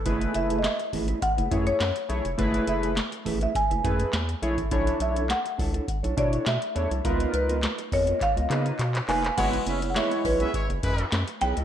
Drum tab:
CC |----------------|----------------|----------------|----------------|
HH |xxxxxxoxxxxxxxxx|xxxxxxoxxxxxxxxx|xxxxxxoxxxxxxxxx|xxxxxxoxxxxxxxox|
CP |----x-------x---|----x-------x---|----x-------x---|----x---x-x-xxxx|
SD |----o-------o---|----o-------o---|----o-------o---|----o-----------|
BD |o-----o-o-o-----|o-----o-o-o----o|o-----o-o-o-----|o-----o-o-------|

CC |x---------------|
HH |xxxxxxoxxxxxxxxx|
CP |----x-------x---|
SD |----o-------o---|
BD |o-----o-o-o-----|